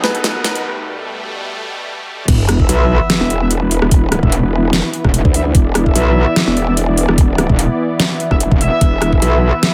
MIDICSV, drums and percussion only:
0, 0, Header, 1, 2, 480
1, 0, Start_track
1, 0, Key_signature, 1, "minor"
1, 0, Tempo, 408163
1, 763, Time_signature, 4, 2, 24, 8
1, 11453, End_track
2, 0, Start_track
2, 0, Title_t, "Drums"
2, 43, Note_on_c, 9, 38, 85
2, 161, Note_off_c, 9, 38, 0
2, 172, Note_on_c, 9, 42, 51
2, 283, Note_off_c, 9, 42, 0
2, 283, Note_on_c, 9, 38, 83
2, 283, Note_on_c, 9, 42, 76
2, 401, Note_off_c, 9, 38, 0
2, 401, Note_off_c, 9, 42, 0
2, 523, Note_on_c, 9, 38, 88
2, 523, Note_on_c, 9, 46, 90
2, 640, Note_off_c, 9, 38, 0
2, 640, Note_off_c, 9, 46, 0
2, 652, Note_on_c, 9, 42, 57
2, 770, Note_off_c, 9, 42, 0
2, 2683, Note_on_c, 9, 36, 112
2, 2683, Note_on_c, 9, 42, 82
2, 2683, Note_on_c, 9, 49, 102
2, 2801, Note_off_c, 9, 36, 0
2, 2801, Note_off_c, 9, 42, 0
2, 2801, Note_off_c, 9, 49, 0
2, 2923, Note_on_c, 9, 37, 80
2, 2923, Note_on_c, 9, 42, 57
2, 3041, Note_off_c, 9, 37, 0
2, 3041, Note_off_c, 9, 42, 0
2, 3053, Note_on_c, 9, 36, 62
2, 3163, Note_on_c, 9, 42, 79
2, 3170, Note_off_c, 9, 36, 0
2, 3281, Note_off_c, 9, 42, 0
2, 3643, Note_on_c, 9, 38, 115
2, 3643, Note_on_c, 9, 42, 82
2, 3761, Note_off_c, 9, 38, 0
2, 3761, Note_off_c, 9, 42, 0
2, 3883, Note_on_c, 9, 42, 56
2, 4001, Note_off_c, 9, 42, 0
2, 4123, Note_on_c, 9, 42, 81
2, 4240, Note_off_c, 9, 42, 0
2, 4363, Note_on_c, 9, 46, 99
2, 4481, Note_off_c, 9, 46, 0
2, 4493, Note_on_c, 9, 37, 81
2, 4603, Note_on_c, 9, 36, 120
2, 4603, Note_on_c, 9, 42, 83
2, 4610, Note_off_c, 9, 37, 0
2, 4721, Note_off_c, 9, 36, 0
2, 4721, Note_off_c, 9, 42, 0
2, 4843, Note_on_c, 9, 37, 76
2, 4843, Note_on_c, 9, 42, 55
2, 4961, Note_off_c, 9, 37, 0
2, 4961, Note_off_c, 9, 42, 0
2, 4973, Note_on_c, 9, 36, 67
2, 5083, Note_on_c, 9, 42, 81
2, 5090, Note_off_c, 9, 36, 0
2, 5200, Note_off_c, 9, 42, 0
2, 5563, Note_on_c, 9, 38, 127
2, 5563, Note_on_c, 9, 42, 81
2, 5681, Note_off_c, 9, 38, 0
2, 5681, Note_off_c, 9, 42, 0
2, 5803, Note_on_c, 9, 42, 57
2, 5921, Note_off_c, 9, 42, 0
2, 5933, Note_on_c, 9, 36, 64
2, 5933, Note_on_c, 9, 37, 50
2, 6043, Note_on_c, 9, 42, 79
2, 6050, Note_off_c, 9, 36, 0
2, 6051, Note_off_c, 9, 37, 0
2, 6161, Note_off_c, 9, 42, 0
2, 6173, Note_on_c, 9, 36, 110
2, 6283, Note_on_c, 9, 46, 98
2, 6290, Note_off_c, 9, 36, 0
2, 6401, Note_off_c, 9, 46, 0
2, 6523, Note_on_c, 9, 36, 119
2, 6523, Note_on_c, 9, 42, 78
2, 6641, Note_off_c, 9, 36, 0
2, 6641, Note_off_c, 9, 42, 0
2, 6763, Note_on_c, 9, 37, 79
2, 6763, Note_on_c, 9, 42, 55
2, 6880, Note_off_c, 9, 37, 0
2, 6880, Note_off_c, 9, 42, 0
2, 6893, Note_on_c, 9, 36, 67
2, 7003, Note_on_c, 9, 42, 80
2, 7010, Note_off_c, 9, 36, 0
2, 7121, Note_off_c, 9, 42, 0
2, 7483, Note_on_c, 9, 38, 127
2, 7483, Note_on_c, 9, 42, 83
2, 7601, Note_off_c, 9, 38, 0
2, 7601, Note_off_c, 9, 42, 0
2, 7723, Note_on_c, 9, 42, 53
2, 7841, Note_off_c, 9, 42, 0
2, 7963, Note_on_c, 9, 42, 78
2, 8080, Note_off_c, 9, 42, 0
2, 8203, Note_on_c, 9, 46, 91
2, 8320, Note_off_c, 9, 46, 0
2, 8332, Note_on_c, 9, 37, 79
2, 8443, Note_on_c, 9, 36, 122
2, 8443, Note_on_c, 9, 42, 80
2, 8450, Note_off_c, 9, 37, 0
2, 8560, Note_off_c, 9, 42, 0
2, 8561, Note_off_c, 9, 36, 0
2, 8683, Note_on_c, 9, 37, 79
2, 8683, Note_on_c, 9, 42, 53
2, 8801, Note_off_c, 9, 37, 0
2, 8801, Note_off_c, 9, 42, 0
2, 8813, Note_on_c, 9, 36, 67
2, 8923, Note_on_c, 9, 42, 76
2, 8930, Note_off_c, 9, 36, 0
2, 9041, Note_off_c, 9, 42, 0
2, 9403, Note_on_c, 9, 38, 125
2, 9403, Note_on_c, 9, 42, 79
2, 9521, Note_off_c, 9, 38, 0
2, 9521, Note_off_c, 9, 42, 0
2, 9643, Note_on_c, 9, 42, 52
2, 9761, Note_off_c, 9, 42, 0
2, 9773, Note_on_c, 9, 36, 64
2, 9773, Note_on_c, 9, 37, 50
2, 9883, Note_on_c, 9, 42, 77
2, 9890, Note_off_c, 9, 36, 0
2, 9890, Note_off_c, 9, 37, 0
2, 10001, Note_off_c, 9, 42, 0
2, 10013, Note_on_c, 9, 36, 111
2, 10123, Note_on_c, 9, 46, 93
2, 10130, Note_off_c, 9, 36, 0
2, 10241, Note_off_c, 9, 46, 0
2, 10363, Note_on_c, 9, 36, 118
2, 10363, Note_on_c, 9, 42, 77
2, 10480, Note_off_c, 9, 42, 0
2, 10481, Note_off_c, 9, 36, 0
2, 10603, Note_on_c, 9, 37, 80
2, 10603, Note_on_c, 9, 42, 52
2, 10721, Note_off_c, 9, 37, 0
2, 10721, Note_off_c, 9, 42, 0
2, 10733, Note_on_c, 9, 36, 63
2, 10843, Note_on_c, 9, 42, 72
2, 10850, Note_off_c, 9, 36, 0
2, 10961, Note_off_c, 9, 42, 0
2, 11323, Note_on_c, 9, 38, 118
2, 11323, Note_on_c, 9, 42, 75
2, 11440, Note_off_c, 9, 38, 0
2, 11440, Note_off_c, 9, 42, 0
2, 11453, End_track
0, 0, End_of_file